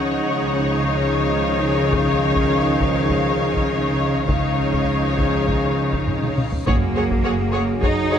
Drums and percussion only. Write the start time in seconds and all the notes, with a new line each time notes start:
1.93 taiko
2.36 taiko
2.81 taiko
3.09 taiko
3.54 taiko
4.29 taiko
4.73 taiko
5.18 taiko
5.48 taiko
5.93 taiko
6.08 taiko low-mid
6.23 taiko mid
6.38 taiko mid
6.53 taiko low
6.67 taiko
7.10 taiko
7.83 taiko